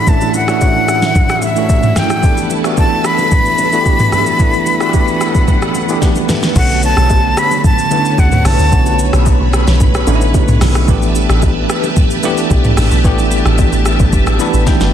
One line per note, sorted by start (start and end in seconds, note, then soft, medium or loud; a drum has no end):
0.00 0.07 A2 medium
0.00 0.07 E3 medium
0.00 0.08 A3 medium
0.00 2.20 A3 medium
0.00 0.08 C#4 medium
0.00 0.09 D4 medium
0.00 6.52 E4 medium
0.00 0.50 F#4 medium
0.00 2.25 A4 medium
0.00 2.19 E5 medium
0.00 2.20 F#5 medium
0.00 0.10 B5 loud
0.07 0.40 A2 medium
0.07 0.40 E3 medium
0.07 0.40 A3 medium
0.07 0.40 C#4 medium
0.07 0.41 D4 medium
0.07 0.41 E4 medium
0.07 0.35 A5 loud
0.07 kick loud
0.07 low conga medium
0.07 shaker medium
0.21 high bongo soft
0.21 shaker soft
0.34 1.46 F#5 loud
0.34 low bongo medium
0.34 shaker loud
0.48 1.34 A2 medium
0.48 1.35 E3 medium
0.48 1.35 A3 medium
0.48 1.35 C#4 medium
0.48 1.35 D4 medium
0.48 1.35 F#4 medium
0.48 cross-stick loud
0.48 shaker medium
0.61 kick medium
0.61 high bongo medium
0.61 shaker medium
0.88 cross-stick medium
0.88 shaker loud
1.02 snare medium
1.02 low bongo medium
1.02 shaker medium
1.15 kick loud
1.15 low conga medium
1.15 shaker medium
1.29 cross-stick medium
1.29 shaker soft
1.42 2.00 E5 medium
1.42 low bongo medium
1.42 shaker medium
1.56 2.10 A2 medium
1.56 2.11 E3 medium
1.56 2.11 A3 medium
1.56 2.11 C#4 medium
1.56 2.11 D4 medium
1.56 2.11 F#4 medium
1.56 shaker medium
1.69 kick medium
1.69 high bongo medium
1.69 shaker medium
1.83 mid tom medium
1.83 low bongo medium
1.83 shaker soft
1.96 2.51 G5 medium
1.96 cross-stick medium
1.96 snare medium
1.96 high bongo medium
1.96 low conga medium
1.96 shaker loud
2.10 cross-stick medium
2.10 shaker medium
2.23 2.56 E3 medium
2.23 2.56 A3 medium
2.23 2.56 B3 medium
2.23 2.57 D4 medium
2.23 2.57 G4 medium
2.23 6.52 A4 medium
2.23 6.52 B4 medium
2.23 4.37 A5 medium
2.23 kick loud
2.23 low conga medium
2.23 shaker medium
2.37 high bongo soft
2.37 shaker medium
2.50 low bongo medium
2.50 shaker medium
2.64 3.51 E3 medium
2.64 3.51 A3 medium
2.64 3.51 B3 medium
2.64 3.51 D4 medium
2.64 3.52 F#4 medium
2.64 cross-stick medium
2.64 shaker medium
2.77 3.07 A5 loud
2.77 kick medium
2.77 high bongo medium
2.77 shaker medium
3.04 6.02 B5 loud
3.04 cross-stick medium
3.04 shaker loud
3.18 low bongo medium
3.18 shaker medium
3.32 kick loud
3.32 low conga medium
3.32 shaker medium
3.46 shaker soft
3.58 low bongo medium
3.58 shaker medium
3.72 4.27 E3 medium
3.72 4.27 A3 medium
3.72 4.27 B3 medium
3.72 4.27 D4 medium
3.72 3.80 F#4 medium
3.72 shaker medium
3.81 4.31 G4 loud
3.86 kick medium
3.86 high bongo medium
3.86 shaker medium
3.99 mid tom medium
3.99 low bongo medium
3.99 shaker soft
4.12 cross-stick loud
4.12 high bongo soft
4.12 low conga medium
4.12 shaker loud
4.26 shaker medium
4.39 4.72 E3 medium
4.39 4.72 A3 medium
4.39 4.73 B3 medium
4.39 4.73 D4 medium
4.39 4.73 E4 medium
4.39 6.54 F#5 medium
4.39 kick loud
4.39 low conga medium
4.39 shaker medium
4.54 high bongo soft
4.54 shaker soft
4.66 low bongo medium
4.66 shaker loud
4.80 5.67 E3 medium
4.80 5.67 A3 medium
4.80 5.67 B3 medium
4.80 5.68 D4 medium
4.80 4.88 F#4 medium
4.80 cross-stick medium
4.80 shaker medium
4.89 5.71 G4 medium
4.94 kick medium
4.94 high bongo medium
4.94 shaker medium
5.08 shaker soft
5.21 cross-stick medium
5.21 shaker loud
5.35 kick loud
5.35 low bongo medium
5.35 shaker medium
5.48 kick loud
5.48 low conga medium
5.48 shaker medium
5.62 cross-stick medium
5.62 shaker soft
5.74 low bongo medium
5.74 shaker medium
5.89 6.43 E3 medium
5.89 6.43 A3 medium
5.89 6.43 B3 medium
5.89 6.43 D4 medium
5.89 6.44 G4 medium
5.89 shaker medium
6.02 kick medium
6.02 snare medium
6.02 high bongo medium
6.02 shaker medium
6.16 low bongo medium
6.16 shaker soft
6.29 snare medium
6.29 high bongo soft
6.29 low conga medium
6.29 shaker loud
6.43 snare medium
6.43 shaker medium
6.56 6.94 B1 loud
6.56 7.43 D3 medium
6.56 10.84 D3 medium
6.56 7.43 A3 medium
6.56 7.43 B3 medium
6.56 7.43 C#4 medium
6.56 7.43 F#4 medium
6.56 14.93 B4 medium
6.56 10.84 C#5 medium
6.56 6.82 F#5 loud
6.56 8.70 A5 medium
6.56 kick loud
6.56 crash loud
6.56 low conga medium
6.56 shaker medium
6.70 high bongo soft
6.70 shaker medium
6.83 7.40 A5 loud
6.83 low bongo medium
6.83 shaker loud
6.97 7.34 B1 loud
6.97 cross-stick loud
6.97 shaker medium
7.10 kick loud
7.10 high bongo medium
7.10 shaker medium
7.37 7.65 B5 loud
7.37 cross-stick loud
7.37 shaker loud
7.51 low bongo medium
7.51 shaker medium
7.64 8.21 A5 loud
7.64 kick loud
7.64 low conga medium
7.64 shaker medium
7.79 shaker soft
7.91 8.56 D3 medium
7.91 8.56 A3 medium
7.91 8.57 B3 medium
7.91 8.57 C#4 medium
7.91 8.57 E4 medium
7.91 low bongo medium
7.91 shaker medium
8.05 shaker medium
8.18 8.43 D2 medium
8.18 8.48 F#5 medium
8.18 kick loud
8.18 high bongo medium
8.18 shaker medium
8.32 mid tom medium
8.32 low bongo medium
8.32 shaker soft
8.45 8.58 B1 loud
8.45 9.00 A5 loud
8.45 cross-stick loud
8.45 open hi-hat medium
8.45 high bongo medium
8.45 low conga medium
8.45 shaker loud
8.59 8.71 D2 medium
8.59 shaker medium
8.72 9.10 B1 loud
8.72 9.59 D3 medium
8.72 9.59 A3 medium
8.72 9.59 B3 medium
8.72 9.59 C#4 medium
8.72 9.60 F#4 medium
8.72 10.86 B5 medium
8.72 kick loud
8.72 low conga medium
8.72 shaker medium
8.86 high bongo medium
8.86 shaker medium
8.99 low bongo medium
8.99 shaker loud
9.13 9.38 B1 loud
9.13 cross-stick loud
9.13 shaker medium
9.26 kick loud
9.26 high bongo medium
9.26 shaker medium
9.40 9.65 B1 medium
9.53 cross-stick loud
9.53 shaker loud
9.67 10.05 B1 medium
9.67 snare medium
9.67 low bongo medium
9.67 shaker medium
9.80 kick loud
9.80 low conga medium
9.80 shaker loud
9.95 cross-stick medium
9.95 shaker soft
10.07 10.32 A1 loud
10.07 10.72 D3 medium
10.07 10.73 A3 medium
10.07 10.73 B3 medium
10.07 10.73 C#4 medium
10.07 10.15 D#4 medium
10.07 low bongo medium
10.07 shaker medium
10.15 10.76 E4 loud
10.21 shaker medium
10.34 kick loud
10.34 high bongo medium
10.34 shaker medium
10.48 10.60 B1 medium
10.48 mid tom medium
10.48 low bongo medium
10.48 shaker medium
10.61 10.86 B1 loud
10.61 cross-stick loud
10.61 snare medium
10.61 open hi-hat medium
10.61 high bongo medium
10.61 low conga medium
10.61 shaker loud
10.75 cross-stick medium
10.75 shaker medium
10.88 11.27 A1 loud
10.88 11.75 E3 medium
10.88 11.75 A3 medium
10.88 11.75 B3 medium
10.88 11.76 D4 medium
10.88 14.93 G4 medium
10.88 11.76 G4 loud
10.88 14.93 E5 medium
10.88 14.93 A5 medium
10.88 kick loud
10.88 low conga medium
10.88 shaker medium
11.02 high bongo soft
11.02 shaker medium
11.15 low bongo medium
11.15 shaker loud
11.29 11.67 A1 loud
11.29 cross-stick loud
11.29 shaker medium
11.42 kick loud
11.42 high bongo medium
11.42 shaker medium
11.70 cross-stick loud
11.70 shaker loud
11.84 low bongo medium
11.84 shaker medium
11.97 kick loud
11.97 low conga medium
11.97 shaker medium
12.11 shaker soft
12.23 12.89 E3 loud
12.23 12.89 A3 medium
12.23 12.89 B3 medium
12.23 12.89 D4 medium
12.23 12.90 G4 loud
12.23 low bongo medium
12.23 shaker medium
12.37 shaker medium
12.51 12.76 B1 medium
12.51 kick loud
12.51 high bongo medium
12.51 shaker medium
12.64 mid tom medium
12.64 low bongo medium
12.64 shaker medium
12.77 12.91 A1 loud
12.77 cross-stick loud
12.77 open hi-hat medium
12.77 high bongo medium
12.77 low conga medium
12.77 shaker loud
12.91 13.04 B1 medium
12.91 shaker medium
13.04 13.43 A1 loud
13.04 13.91 E3 medium
13.04 13.91 A3 medium
13.04 13.91 B3 medium
13.04 13.92 D4 medium
13.04 13.92 G4 loud
13.04 kick loud
13.04 low conga medium
13.04 shaker medium
13.19 high bongo medium
13.19 shaker medium
13.31 low bongo medium
13.31 shaker loud
13.46 13.71 A1 loud
13.46 cross-stick medium
13.46 shaker medium
13.58 kick loud
13.58 high bongo medium
13.58 shaker medium
13.72 13.98 A1 medium
13.72 shaker soft
13.86 cross-stick medium
13.86 shaker loud
14.00 14.12 A1 loud
14.00 kick loud
14.00 low bongo medium
14.00 shaker medium
14.13 14.26 G1 loud
14.13 kick loud
14.13 low conga medium
14.13 shaker medium
14.26 14.39 A1 medium
14.26 cross-stick medium
14.26 shaker soft
14.39 14.93 E3 medium
14.39 14.93 A3 medium
14.39 14.93 B3 medium
14.39 14.67 D4 medium
14.39 14.68 A4 loud
14.39 14.65 B5 medium
14.39 low bongo medium
14.39 shaker medium
14.54 14.66 A1 medium
14.54 shaker medium
14.66 14.92 G5 medium
14.66 kick medium
14.66 snare medium
14.66 high bongo medium
14.66 shaker medium
14.81 14.93 G1 medium
14.81 14.93 F#4 medium
14.81 14.93 D5 medium
14.81 snare medium
14.81 low bongo medium
14.81 shaker soft